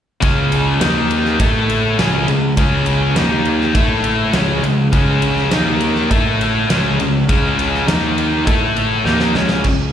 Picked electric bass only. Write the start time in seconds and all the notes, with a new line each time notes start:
0.22 C#2
0.81 D#2
1.40 A2
1.99 C#2
2.28 C#2
2.57 C#2
3.16 D#2
3.75 A2
4.33 C#2
4.63 C#2
4.93 C#2
5.52 D#2
6.11 A2
6.70 C#2
7.00 C#2
7.29 C#2
7.88 D#2
8.47 A2
9.05 D#2
9.35 C#2
9.65 C#2